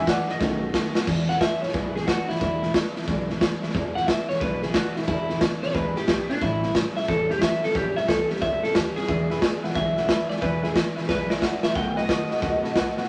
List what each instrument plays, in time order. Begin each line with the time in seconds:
Already playing: upright bass E1
0.06 steel-string acoustic guitar E3 G#3 D4 E4, upright piano D5 F#5, kick, snare, hi-hat pedal
0.28 steel-string acoustic guitar E3 G#3 D4 E4, upright piano D#5, muted upright bass stroke, snare
0.40 upright bass B1, steel-string acoustic guitar B2 D#3 A3 B3 F#4, upright piano D#3 A3 C#4, kick, snare
0.61 steel-string acoustic guitar A3 B3 F#4
0.73 steel-string acoustic guitar D#3 A3 B3 F#4, kick, snare, hi-hat pedal
0.94 steel-string acoustic guitar A3 B3 F#4, muted upright bass stroke, snare
1.07 steel-string acoustic guitar E2 B2 E3 G#3 D4 E4, upright bass E2, kick, snare, crash
1.28 steel-string acoustic guitar E3 G#3 D4 E4, clean electric guitar F#5, snare
1.40 steel-string acoustic guitar E3 G#3 D4 E4, clean electric guitar E5, kick, snare, hi-hat pedal
1.61 steel-string acoustic guitar E3 G#3 D4 E4, clean electric guitar C#5, muted upright bass stroke, snare
1.68 snare
1.73 upright bass B1, steel-string acoustic guitar E2 B2 E3 G#3 D4 E4, clean electric guitar B4, kick, snare
1.95 steel-string acoustic guitar E3 G#3 D4 E4, clean electric guitar G#4, snare
2.07 steel-string acoustic guitar E3 G#3 D4 E4, clean electric guitar F#4, kick, snare, hi-hat pedal
2.28 steel-string acoustic guitar E3 G#3 D4 E4, clean electric guitar E4, muted upright bass stroke, snare
2.35 snare
2.40 steel-string acoustic guitar E2 B2 E3 G#3 D4 E4, upright bass E2, clean electric guitar E4, kick, snare
2.62 steel-string acoustic guitar E3 G#3 D4 E4, snare
2.74 steel-string acoustic guitar E3 G#3 D4 E4, kick, snare, hi-hat pedal
2.95 steel-string acoustic guitar E3 G#3 D4 E4, muted upright bass stroke, snare
3.02 snare
3.07 upright bass B1, steel-string acoustic guitar E2 B2 E3 G#3 D4 E4, kick, snare
3.28 steel-string acoustic guitar E3 G#3 D4 E4, snare
3.40 steel-string acoustic guitar E3 G#3 D4 E4, kick, snare, hi-hat pedal
3.62 steel-string acoustic guitar E3 G#3 D4 E4, muted upright bass stroke, snare
3.69 snare
3.74 steel-string acoustic guitar E2 B2 E3 G#3 D4 E4, upright bass E2, kick, snare
3.95 steel-string acoustic guitar E3 G#3 D4 E4, clean electric guitar F#5, snare
4.07 steel-string acoustic guitar E3 G#3 D4 E4, clean electric guitar E5, kick, snare, hi-hat pedal
4.29 steel-string acoustic guitar E3 G#3 D4 E4, clean electric guitar C#5, muted upright bass stroke, snare
4.35 snare
4.40 upright bass B1, steel-string acoustic guitar E2 B2 E3 G#3 D4 E4, clean electric guitar B4, kick, snare
4.62 steel-string acoustic guitar E3 G#3 D4 E4, clean electric guitar G#4, snare
4.74 steel-string acoustic guitar E3 G#3 D4 E4, clean electric guitar F#4, kick, snare, hi-hat pedal
4.96 steel-string acoustic guitar E3 G#3 D4 E4, clean electric guitar E4, snare
5.02 snare
5.07 steel-string acoustic guitar E2 B2 E3 G#3 D4 E4, upright bass E2, clean electric guitar E4, kick, snare
5.28 steel-string acoustic guitar E3 G#3 D4 E4, snare
5.41 steel-string acoustic guitar E3 G#3 D4 E4, kick, snare, hi-hat pedal
5.63 steel-string acoustic guitar E3 G#3 D4 E4, clean electric guitar D5, muted upright bass stroke, snare
5.68 snare
5.74 upright bass C#2, steel-string acoustic guitar E2 B2 E3 G#3 D4 E4, clean electric guitar B4, kick, snare
5.96 steel-string acoustic guitar E3 G#3 D4 E4, clean electric guitar G4, muted upright bass stroke, snare
6.07 upright bass B1, steel-string acoustic guitar E3 G#3 D4 E4, kick, snare, hi-hat pedal
6.29 steel-string acoustic guitar E3 G#3 D4 E4, clean electric guitar D4, muted upright bass stroke, snare
6.36 snare
6.41 upright bass A1, steel-string acoustic guitar A2 E3 G3 C#4 E4, clean electric guitar E4, kick, snare
6.63 steel-string acoustic guitar G3 C#4 E4, snare
6.74 steel-string acoustic guitar E3 G3 C#4 E4, kick, snare, hi-hat pedal
6.96 steel-string acoustic guitar G3 C#4 E4, clean electric guitar E5, muted upright bass stroke, snare
7.03 snare
7.08 upright bass E1, steel-string acoustic guitar A2 E3 G3 C#4 E4, clean electric guitar A4, kick, snare
7.29 steel-string acoustic guitar G3 C#4 E4, clean electric guitar G4, snare
7.41 steel-string acoustic guitar E3 G3 C#4 E4, clean electric guitar E5, kick, snare, hi-hat pedal
7.63 steel-string acoustic guitar G3 C#4 E4, clean electric guitar A4, muted upright bass stroke, snare
7.69 snare
7.75 upright bass A#1, steel-string acoustic guitar A#2 E3 G3 C#4 E4, clean electric guitar G4, kick, snare
7.96 steel-string acoustic guitar G3 C#4 E4, clean electric guitar E5, muted upright bass stroke, snare
8.08 upright bass C2, steel-string acoustic guitar E3 G3 C#4 E4, clean electric guitar A4, kick, snare, hi-hat pedal
8.30 steel-string acoustic guitar G3 C#4 E4, clean electric guitar G4, muted upright bass stroke, snare
8.36 snare
8.41 upright bass C#2, steel-string acoustic guitar A#2 E3 G3 C#4 E4, clean electric guitar E5, kick, snare
8.62 steel-string acoustic guitar G3 C#4 E4, clean electric guitar A4, snare
8.74 upright bass D#2, steel-string acoustic guitar E3 G3 C#4 E4, clean electric guitar G4, kick, snare, hi-hat pedal
8.96 steel-string acoustic guitar G3 C#4 E4, clean electric guitar G#4, snare
9.03 snare
9.08 steel-string acoustic guitar E2 B2 E3 G#3 D4 E4, upright bass E2, upright piano B4 E5 G#5, kick, snare
9.29 steel-string acoustic guitar E3 G#3 D4 E4, upright piano B4 E5 B5, snare
9.41 steel-string acoustic guitar E3 G#3 D4 E4, upright piano B4 E5 G#5, kick, snare, hi-hat pedal
9.63 steel-string acoustic guitar E3 G#3 D4 E4, upright piano B4 E5 F#5, muted upright bass stroke, snare
9.70 snare
9.75 upright bass B1, steel-string acoustic guitar E2 B2 E3 G#3 D4 E4, upright piano B4 E5 G#5, clean electric guitar E5, kick, snare
9.96 steel-string acoustic guitar E3 G#3 D4 E4, upright piano B4 E5 F#5, snare
10.08 steel-string acoustic guitar E3 G#3 D4 E4, upright piano B4 E5 B5, kick, snare, hi-hat pedal
10.29 steel-string acoustic guitar E3 G#3 D4 E4, upright piano B4 E5 G#5, clean electric guitar D5, muted upright bass stroke, snare
10.36 snare
10.41 steel-string acoustic guitar E2 B2 E3 G#3 D4 E4, upright bass E2, upright piano B4 E5 G#5, clean electric guitar B4, kick, snare
10.62 steel-string acoustic guitar E3 G#3 D4 E4, clean electric guitar G#4, upright piano B4 E5 G#5, snare
10.74 steel-string acoustic guitar E3 G#3 D4 E4, upright piano B4 E5, kick, snare, hi-hat pedal
10.96 steel-string acoustic guitar E3 G#3 D4 E4, upright piano B4 E5 G#5, muted upright bass stroke, snare
11.03 snare
11.08 upright bass B1, steel-string acoustic guitar E2 B2 E3 G#3 D4 E4, upright piano B4 E5 G#5, clean electric guitar B4, kick, snare
11.30 steel-string acoustic guitar E3 G#3 D4 E4, upright piano B4 E5 G#5, clean electric guitar D5, snare
11.41 steel-string acoustic guitar E3 G#3 D4 E4, upright piano B4 E5 F#5, kick, snare, hi-hat pedal
11.63 steel-string acoustic guitar E3 G#3 D4 E4, upright piano B4 E5 B5, clean electric guitar E5, muted upright bass stroke, snare
11.75 upright bass B1, steel-string acoustic guitar B2 D#3 A3 B3 F#4, upright piano B4 D#5 F#5, clean electric guitar G5, kick, snare
11.96 steel-string acoustic guitar A3 B3 F#4, upright piano B4 D#5 F#5, clean electric guitar D#5, snare
12.08 steel-string acoustic guitar D#3 A3 B3 F#4, upright piano B4 D#5 F#5, kick, snare, hi-hat pedal
12.29 steel-string acoustic guitar A3 B3 F#4, upright piano B4 D#5 F#5, muted upright bass stroke, snare
12.37 snare
12.41 upright bass C#2, steel-string acoustic guitar B2 D#3 A3 B3 F#4, upright piano B4 D#5 F#5, kick, snare
12.63 steel-string acoustic guitar A3 B3 F#4, upright piano B4 D#5 A5, muted upright bass stroke, snare
12.75 upright bass B1, steel-string acoustic guitar D#3 A3 B3 F#4, upright piano B4 D#5 F#5, kick, snare, hi-hat pedal
12.96 steel-string acoustic guitar A3 B3 F#4, upright piano B4 D#5 F#5, muted upright bass stroke, snare
13.03 snare